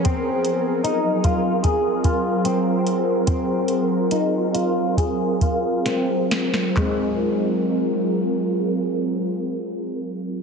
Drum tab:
HH |x-x-x-x-x-x-x-x-|x-x-x-x-x-x-x-x-|----------------|
CP |----------------|----------------|x---------------|
SD |----------------|------------o-oo|----------------|
FT |----------------|----------------|o---------------|
BD |o-----o-o-o-----|o-------o-o-----|o---------------|